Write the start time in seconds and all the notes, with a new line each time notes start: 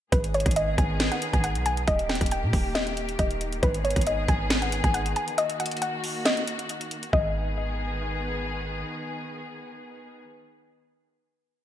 0.12 G#1 D#3 B3 G#4 B4, kick, closed hi-hat
0.24 closed hi-hat
0.34 C#5, closed hi-hat
0.40 closed hi-hat
0.46 G#1, kick, closed hi-hat
0.51 closed hi-hat
0.56 D#5, closed hi-hat
0.78 G#1 G#5, kick, closed hi-hat
1.00 snare, closed hi-hat
1.12 F#5, closed hi-hat
1.22 closed hi-hat
1.33 G#1 G#5, kick, closed hi-hat
1.44 F#5, closed hi-hat
1.55 B1, closed hi-hat
1.66 G#5, closed hi-hat
1.77 closed hi-hat
1.88 D#1 D#3 A#3 G4 D#5, kick, closed hi-hat
1.99 closed hi-hat
2.09 G5, snare, closed hi-hat
2.15 closed hi-hat
2.21 D#1, kick, closed hi-hat
2.26 closed hi-hat
2.31 G5, closed hi-hat
2.43 A#2
2.53 D#1, kick, open hi-hat
2.75 D#5, snare, closed hi-hat
2.87 closed hi-hat
2.97 closed hi-hat
3.09 closed hi-hat
3.19 D#1 D#5, kick, closed hi-hat
3.31 closed hi-hat
3.41 closed hi-hat
3.52 closed hi-hat
3.63 G#1 B3 G#4 B4, kick, closed hi-hat
3.74 closed hi-hat
3.84 C#5, closed hi-hat
3.91 closed hi-hat
3.96 G#1, kick, closed hi-hat
4.01 closed hi-hat
4.07 D#5, closed hi-hat
4.28 G#1 G#5, kick, closed hi-hat
4.50 snare, closed hi-hat
4.62 F#5, closed hi-hat
4.72 closed hi-hat
4.84 G#1 G#5, kick, closed hi-hat
4.94 F#5, closed hi-hat
5.06 closed hi-hat
5.16 G#5, closed hi-hat
5.28 closed hi-hat
5.38 A#3 F#4 D#5, closed hi-hat
5.50 closed hi-hat
5.60 F#5, closed hi-hat
5.66 closed hi-hat
5.71 closed hi-hat
5.77 closed hi-hat
5.82 F#5, closed hi-hat
6.04 open hi-hat
6.25 D#5, snare, closed hi-hat
6.37 closed hi-hat
6.47 closed hi-hat
6.59 closed hi-hat
6.69 closed hi-hat
6.81 closed hi-hat
6.91 closed hi-hat
7.03 closed hi-hat
7.13 G#1 D#3 B3 G#4 D#5, kick